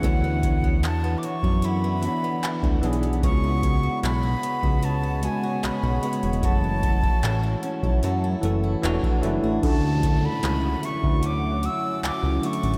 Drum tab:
HH |x---x---x---x---x---x---x---xxxx|x---x---x---x---x---x---x---xxxx|x---x---x---x---x---x---x---x---|x---x---x---x---x---x---x---xxxx|
CP |--------x---------------x-------|--------x---------------x-------|--------x---------------x-------|--------x---------------x-------|
BD |o---o-o-------o-----------o-----|o---o---------o-----------------|o---o-o-------o-----------o-----|o---o---------o-----------------|